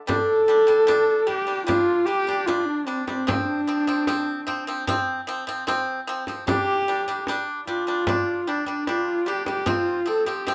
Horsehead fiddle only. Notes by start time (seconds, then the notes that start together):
0.08 A4
1.27 G4
1.67 F4
2.06 G4
2.46 F4
2.65 D4
2.86 C4
3.07 C4
3.27 D4
6.48 G4
7.67 F4
8.47 D4
8.68 D4
8.88 F4
9.27 G4
9.47 G4
9.68 F4
10.08 A4
10.28 G4